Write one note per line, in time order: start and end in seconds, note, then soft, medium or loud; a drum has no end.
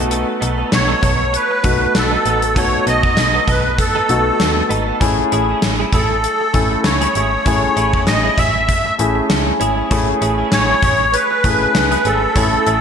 0.00 0.25 B1 medium
0.00 0.79 A3 medium
0.00 0.79 B3 medium
0.00 0.80 D#4 medium
0.00 0.80 F#4 medium
0.10 0.29 B3 medium
0.10 0.27 D#4 medium
0.10 0.26 A4 medium
0.10 closed hi-hat medium
0.27 muted clean electric guitar stroke soft
0.40 0.64 B1 medium
0.40 0.55 B3 medium
0.40 0.56 D#4 medium
0.40 0.56 A4 medium
0.40 closed hi-hat medium
0.57 0.70 B3 soft
0.57 0.70 D#4 medium
0.57 0.70 A4 medium
0.71 0.95 B1 loud
0.71 1.36 C#5 medium
0.71 muted clean electric guitar stroke soft
0.71 snare loud
0.71 closed hi-hat medium
0.88 1.00 B3 medium
0.88 1.00 D#4 medium
0.88 1.00 A4 medium
1.01 1.37 B1 loud
1.01 1.20 B3 medium
1.01 1.18 D#4 medium
1.01 1.18 A4 medium
1.01 kick medium
1.01 closed hi-hat medium
1.19 muted clean electric guitar stroke soft
1.32 1.98 B4 medium
1.32 muted clean electric guitar stroke soft
1.32 closed hi-hat medium
1.50 muted clean electric guitar stroke soft
1.63 1.86 B1 loud
1.63 2.32 A3 medium
1.63 2.32 B3 medium
1.63 2.32 D#4 medium
1.63 2.32 F#4 medium
1.63 kick medium
1.63 closed hi-hat medium
1.81 muted clean electric guitar stroke soft
1.95 2.17 B1 medium
1.95 2.59 A4 medium
1.95 muted clean electric guitar stroke soft
1.95 snare loud
1.95 closed hi-hat medium
2.11 2.24 B3 medium
2.11 2.23 D#4 medium
2.11 2.23 A4 medium
2.25 2.58 A1 medium
2.25 2.43 B3 medium
2.25 2.42 D#4 medium
2.25 2.41 A4 medium
2.25 closed hi-hat medium
2.42 muted clean electric guitar stroke soft
2.42 closed hi-hat medium
2.55 2.78 B1 loud
2.55 3.46 A3 medium
2.55 3.46 B3 medium
2.55 2.74 B3 medium
2.55 3.46 D#4 medium
2.55 2.73 D#4 medium
2.55 3.46 F#4 medium
2.55 2.72 A4 medium
2.55 2.85 C#5 medium
2.55 kick loud
2.55 closed hi-hat medium
2.73 muted clean electric guitar stroke soft
2.87 3.09 B1 medium
2.87 3.01 B3 medium
2.87 3.01 D#4 medium
2.87 3.02 A4 medium
2.87 3.51 D#5 loud
2.87 closed hi-hat medium
3.03 3.16 B3 medium
3.03 3.15 D#4 medium
3.03 3.15 A4 medium
3.03 kick medium
3.17 3.40 B1 loud
3.17 muted clean electric guitar stroke soft
3.17 snare loud
3.17 closed hi-hat medium
3.33 3.46 B3 soft
3.33 3.46 D#4 soft
3.33 3.45 A4 medium
3.47 3.82 B1 loud
3.47 3.65 B3 medium
3.47 3.64 D#4 medium
3.47 3.63 A4 medium
3.47 3.77 B4 medium
3.47 kick medium
3.47 closed hi-hat medium
3.64 muted clean electric guitar stroke soft
3.78 4.67 A4 medium
3.78 muted clean electric guitar stroke soft
3.78 kick medium
3.78 closed hi-hat medium
3.95 4.07 B3 medium
3.95 4.08 D#4 medium
3.95 4.08 A4 medium
4.08 4.32 B1 medium
4.08 4.77 A3 medium
4.08 4.23 B3 medium
4.08 4.77 B3 medium
4.08 4.23 D#4 medium
4.08 4.77 D#4 medium
4.08 4.77 F#4 medium
4.08 4.24 A4 medium
4.08 closed hi-hat medium
4.26 muted clean electric guitar stroke medium
4.39 4.62 D#2 medium
4.39 muted clean electric guitar stroke soft
4.39 snare medium
4.39 closed hi-hat medium
4.56 muted clean electric guitar stroke soft
4.69 4.93 G#1 medium
4.69 4.86 B3 medium
4.69 4.86 D#4 medium
4.69 4.85 A4 medium
4.69 closed hi-hat medium
4.86 4.99 B3 soft
4.86 4.99 D#4 soft
4.86 4.98 A4 medium
5.00 5.23 A1 medium
5.00 5.90 A3 medium
5.00 5.18 C#4 medium
5.00 5.91 C#4 medium
5.00 5.17 E4 medium
5.00 5.91 E4 medium
5.00 5.91 G#4 medium
5.00 5.16 G#4 medium
5.00 kick loud
5.00 closed hi-hat medium
5.17 muted clean electric guitar stroke soft
5.32 5.54 A1 loud
5.32 5.46 C#4 medium
5.32 5.46 E4 medium
5.32 5.46 G#4 medium
5.32 closed hi-hat medium
5.49 5.61 C#4 soft
5.49 5.61 E4 medium
5.49 5.60 G#4 medium
5.62 5.85 A1 loud
5.62 muted clean electric guitar stroke soft
5.62 snare loud
5.62 closed hi-hat medium
5.79 5.91 C#4 soft
5.79 5.91 E4 medium
5.79 5.91 G#4 medium
5.93 6.27 A1 loud
5.93 6.11 C#4 medium
5.93 6.10 E4 medium
5.93 6.09 G#4 medium
5.93 6.81 A4 medium
5.93 kick medium
5.93 closed hi-hat medium
6.10 muted clean electric guitar stroke soft
6.23 muted clean electric guitar stroke soft
6.23 closed hi-hat medium
6.41 muted clean electric guitar stroke soft
6.53 6.76 A1 loud
6.53 7.22 A3 medium
6.53 7.22 C#4 medium
6.53 7.22 E4 medium
6.53 7.22 G#5 medium
6.53 kick medium
6.53 closed hi-hat medium
6.71 muted clean electric guitar stroke medium
6.84 7.07 C#2 medium
6.84 7.45 C#5 medium
6.84 muted clean electric guitar stroke soft
6.84 snare loud
6.84 closed hi-hat medium
7.01 7.13 C#4 soft
7.01 7.13 E4 medium
7.01 7.13 G#4 medium
7.01 closed hi-hat medium
7.15 7.38 G#1 medium
7.15 7.33 C#4 medium
7.15 7.32 E4 medium
7.15 7.31 G#4 medium
7.15 closed hi-hat medium
7.32 muted clean electric guitar stroke soft
7.45 7.68 A1 loud
7.45 8.36 A3 medium
7.45 7.63 C#4 medium
7.45 8.36 C#4 medium
7.45 7.62 E4 medium
7.45 8.36 E4 medium
7.45 7.61 G#4 medium
7.45 8.36 G#4 medium
7.45 8.03 C#5 medium
7.45 kick loud
7.45 closed hi-hat medium
7.62 muted clean electric guitar stroke soft
7.76 7.99 A1 medium
7.76 7.90 C#4 medium
7.76 7.91 E4 medium
7.76 7.91 G#4 medium
7.76 closed hi-hat medium
7.93 8.05 C#4 medium
7.93 8.05 E4 medium
7.93 8.05 G#4 medium
7.93 kick medium
8.06 8.30 A1 loud
8.06 8.39 D#5 medium
8.06 muted clean electric guitar stroke soft
8.06 snare loud
8.06 closed hi-hat medium
8.23 8.36 C#4 soft
8.23 8.36 E4 medium
8.23 8.35 G#4 medium
8.37 8.72 A1 loud
8.37 8.55 C#4 medium
8.37 8.54 E4 medium
8.37 8.53 G#4 medium
8.37 8.95 E5 loud
8.37 kick medium
8.37 closed hi-hat medium
8.54 muted clean electric guitar stroke soft
8.68 muted clean electric guitar stroke soft
8.68 kick medium
8.68 closed hi-hat medium
8.85 muted clean electric guitar stroke soft
8.98 9.21 A1 loud
8.98 9.67 A3 medium
8.98 9.67 C#4 medium
8.98 9.67 E4 medium
8.98 9.67 G#4 medium
8.98 closed hi-hat medium
9.15 muted clean electric guitar stroke soft
9.29 9.52 C#2 medium
9.29 muted clean electric guitar stroke soft
9.29 snare loud
9.29 closed hi-hat medium
9.46 muted clean electric guitar stroke soft
9.60 9.83 G#1 medium
9.60 9.77 C#4 medium
9.60 9.76 E4 medium
9.60 9.75 G#4 medium
9.60 closed hi-hat medium
9.76 9.89 C#4 soft
9.76 9.89 E4 soft
9.76 9.88 G#4 soft
9.91 10.13 A1 loud
9.91 10.81 A3 medium
9.91 10.81 C#4 medium
9.91 10.09 C#4 medium
9.91 10.81 E4 medium
9.91 10.07 E4 medium
9.91 10.81 G#4 medium
9.91 10.06 G#4 medium
9.91 kick loud
9.91 closed hi-hat medium
10.08 muted clean electric guitar stroke soft
10.21 10.44 A1 medium
10.21 10.35 C#4 medium
10.21 10.36 E4 medium
10.21 10.36 G#4 medium
10.21 closed hi-hat medium
10.38 10.50 C#4 soft
10.38 10.50 E4 medium
10.38 10.50 G#4 medium
10.52 10.74 A1 loud
10.52 11.15 C#5 loud
10.52 muted clean electric guitar stroke soft
10.52 snare loud
10.52 closed hi-hat medium
10.69 10.81 C#4 soft
10.69 10.81 E4 medium
10.69 10.80 G#4 medium
10.82 11.17 A1 loud
10.82 11.00 C#4 medium
10.82 11.00 E4 medium
10.82 10.98 G#4 medium
10.82 kick medium
10.82 closed hi-hat medium
10.99 muted clean electric guitar stroke soft
11.13 12.08 B4 medium
11.13 muted clean electric guitar stroke soft
11.13 closed hi-hat medium
11.31 muted clean electric guitar stroke soft
11.44 11.66 A1 loud
11.44 12.12 A3 medium
11.44 12.12 C#4 medium
11.44 12.12 E4 medium
11.44 12.12 G#4 medium
11.44 kick medium
11.44 closed hi-hat medium
11.61 muted clean electric guitar stroke soft
11.75 11.97 C#2 medium
11.75 muted clean electric guitar stroke soft
11.75 snare loud
11.75 closed hi-hat medium
11.91 12.03 C#4 soft
11.91 12.03 E4 medium
11.91 12.03 G#4 medium
11.91 closed hi-hat medium
12.05 12.27 G#1 medium
12.05 12.23 C#4 medium
12.05 12.22 E4 medium
12.05 12.21 G#4 medium
12.05 12.81 A4 medium
12.05 closed hi-hat medium
12.22 muted clean electric guitar stroke soft
12.35 12.58 A1 loud
12.35 12.81 A3 medium
12.35 12.81 C#4 medium
12.35 12.54 C#4 medium
12.35 12.81 E4 medium
12.35 12.53 E4 medium
12.35 12.52 G#4 medium
12.35 12.81 G#5 medium
12.35 kick loud
12.35 closed hi-hat medium
12.53 muted clean electric guitar stroke soft
12.67 12.81 A1 loud
12.67 12.81 C#4 medium
12.67 12.81 E4 medium
12.67 12.81 G#4 medium
12.67 closed hi-hat medium